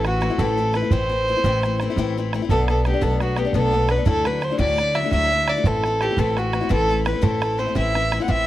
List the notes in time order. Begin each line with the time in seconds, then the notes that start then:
Already playing: A1
0.04 E3 A3 C4 E4 F#4, bodhran
0.21 E3 A3 C4 E4, bodhran
0.30 A3 C4 E4
0.38 A1 A2 E3 A3 C4 E4 A4, bodhran
0.57 E3 A3 C4 E4
0.73 E3 A3 C4 E4 B4, bodhran
0.82 A3 C4 E4
0.91 A1 A2 E3 A3 C4 E4 C5, bodhran
1.10 E3 A3 C4 E4
1.28 E3 A3 C4 E4
1.37 A3 C4 E4
1.44 A1 A2 E3 A3 C4 E4, bodhran
1.63 E3 A3 C4 E4, bodhran
1.80 E3 A3 C4 E4, bodhran
1.90 A3 C4 E4
1.96 A1 A2 E3 A3 C4 E4, bodhran
2.18 E3 A3 C4 E4
2.33 E3 A3 C4 E4, bodhran
2.42 A3 C4 E4
2.49 B1 B2 F#3 A3 B3 D4 A4, bodhran
2.68 F#3 A3 B3 D4 A4, bodhran
2.85 F#3 A3 B3 D4 G4, bodhran
2.94 A3 B3 D4
3.01 B1 B2 F#3 A3 B3 D4 A4, bodhran
3.20 F#3 A3 B3 D4 F#4, bodhran
3.36 F#3 A3 B3 D4 G4, bodhran
3.45 A3 B3 D4
3.53 B1 B2 F#3 A3 B3 D4 A4, bodhran
3.72 F#3 A3 B3 D4
3.89 F#3 A3 B3 D4 B4, bodhran
3.97 A3 B3 D4
4.05 D2 A2 F#3 A3 D4 E4 A4, bodhran
4.25 F#3 A3 D4 E4 B4, bodhran
4.41 F#3 A3 D4 E4 C5, bodhran
4.50 F#3 A3 D4 E4
4.58 D2 A2 F#3 A3 D4 E4 D5, bodhran
4.78 F#3 A3 D4 E4, bodhran
4.94 F#3 A3 D4 E4 E5, bodhran
5.04 F#3 A3 D4 E4
5.11 D2 A2 F#3 A3 D4 E4 E5, bodhran
5.31 F#3 A3 D4 E4
5.48 F#3 A3 D4 E4 D5, bodhran
5.56 F#3 A3 D4 E4
5.64 A1 A2 E3 A3 C4 E4 A4, bodhran
5.84 E3 A3 C4 E4, bodhran
6.01 E3 A3 C4 E4 G4, bodhran
6.09 A3 C4 E4
6.17 A1 A2 E3 A3 C4 E4 A4, bodhran
6.37 E3 A3 C4 E4 F#4, bodhran
6.53 E3 A3 C4 E4, bodhran
6.61 A3 C4 E4
6.69 A1 A2 E3 A3 C4 E4 A4, bodhran
6.89 E3 A3 C4 E4
7.05 E3 A3 C4 E4 B4, bodhran
7.13 A3 C4 E4
7.22 A1 A2 E3 A3 C4 E4 A4, bodhran
7.41 E3 A3 C4 E4, bodhran
7.58 E3 A3 C4 E4 C5
7.67 A3 C4 E4
7.75 A1 A2 E3 A3 C4 E4 E5, bodhran
7.94 E3 A3 C4 E4, bodhran
8.11 E3 A3 C4 E4, bodhran
8.20 A3 C4 E4 F#5
8.28 A1 A2 E3 A3 C4 E4 E5, bodhran